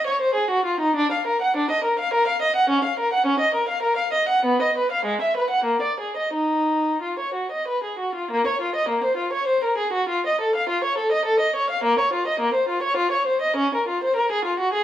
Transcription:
0.07 0.20 C#5 medium
0.21 0.35 C5 medium
0.34 0.48 G#4 medium
0.50 0.64 F#4 medium
0.65 0.79 F4 medium
0.80 0.94 D#4 medium
0.96 1.10 D4 medium
1.12 1.25 F5 medium
1.27 1.40 A#4 medium
1.42 1.55 F#5 medium
1.56 1.69 D4 medium
1.70 1.84 D#5 medium
1.84 1.98 A#4 medium
1.99 2.12 F5 medium
2.14 2.27 A#4 medium
2.27 2.41 F5 medium
2.42 2.55 D#5 medium
2.56 2.69 F#5 medium
2.69 2.83 C#4 medium
2.84 2.97 F5 medium
2.99 3.12 A#4 medium
3.13 3.26 F#5 medium
3.26 3.40 C#4 medium
3.40 3.54 D#5 medium
3.54 3.68 A#4 medium
3.68 3.83 F5 medium
3.82 3.97 A#4 medium
3.96 4.12 F5 medium
4.13 4.29 D#5 medium
4.29 4.45 F#5 medium
4.45 4.61 B3 medium
4.62 4.76 D#5 medium
4.78 4.91 B4 medium
4.92 5.06 F5 medium
5.05 5.19 G#3 medium
5.21 5.35 E5 medium
5.37 5.50 B4 medium
5.50 5.65 F#5 medium
5.64 5.80 A#3 medium
5.82 5.97 D5 medium
6.00 6.15 G#4 soft
6.17 6.33 D#5 medium
6.33 7.00 D#4 medium
7.02 7.18 F4 medium
7.19 7.35 C#5 medium
7.34 7.50 F#4 soft
7.52 7.67 D#5 medium
7.68 7.83 B4 medium
7.84 7.99 G#4 soft
7.99 8.14 F#4 soft
8.15 8.30 F4 medium
8.31 8.45 A#3 medium
8.47 8.60 C#5 medium
8.61 8.75 F4 medium
8.75 8.89 D#5 medium
8.89 9.02 A#3 medium
9.04 9.17 C5 medium
9.17 9.31 F4 medium
9.33 9.46 C#5 medium
9.47 9.61 C5 medium
9.64 9.78 A#4 medium
9.78 9.92 G#4 medium
9.93 10.08 F#4 medium
10.09 10.24 F4 medium
10.26 10.40 D#5 medium
10.41 10.54 A4 medium
10.55 10.69 F5 medium
10.69 10.83 F4 medium
10.84 10.98 C#5 medium
10.98 11.12 A4 medium
11.12 11.26 D#5 medium
11.25 11.40 A4 medium
11.40 11.55 D#5 medium
11.56 11.70 C#5 medium
11.70 11.84 F5 medium
11.84 11.98 A#3 medium
11.99 12.13 C#5 medium
12.13 12.27 F4 medium
12.27 12.42 D#5 medium
12.40 12.55 A#3 medium
12.54 12.69 C5 medium
12.68 12.83 F4 medium
12.83 12.97 C#5 medium
12.97 13.12 F4 medium
13.11 13.27 C#5 medium
13.26 13.42 C5 medium
13.41 13.57 D#5 medium
13.56 13.72 C#4 medium
13.75 13.88 A#4 medium
13.88 14.02 F4 medium
14.04 14.17 C5 medium
14.16 14.30 A#4 medium
14.32 14.45 G#4 medium
14.45 14.59 F4 medium
14.59 14.73 F#4 medium
14.73 14.84 G#4 medium

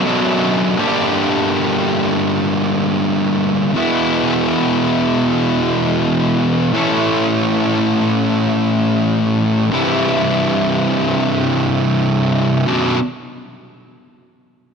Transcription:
0.04 0.76 B1 medium
0.04 0.77 F#2 medium
0.04 0.77 B2 medium
0.04 0.78 F#3 medium
0.04 0.78 D4 medium
0.77 3.74 G2 medium
0.77 3.74 D3 medium
0.77 3.74 G3 medium
0.77 3.75 A#3 medium
0.77 3.75 D4 medium
0.77 3.75 G4 medium
3.75 6.71 E2 medium
3.75 6.71 B2 medium
3.75 6.74 E3 medium
3.75 6.72 G#3 medium
3.75 6.72 B3 medium
3.75 6.76 E4 medium
6.73 9.69 A2 medium
6.73 9.69 E3 medium
6.73 9.69 A3 loud
6.73 9.70 C#4 loud
6.73 9.70 E4 medium
6.73 9.70 A4 medium
9.71 12.65 C2 medium
9.71 12.66 G2 medium
9.71 12.66 C3 medium
9.71 12.66 E3 medium
9.71 12.67 E4 medium
12.67 12.97 B1 medium
12.67 12.97 F#2 medium
12.67 12.97 B2 medium
12.67 12.98 F#3 loud
12.67 12.98 D4 medium

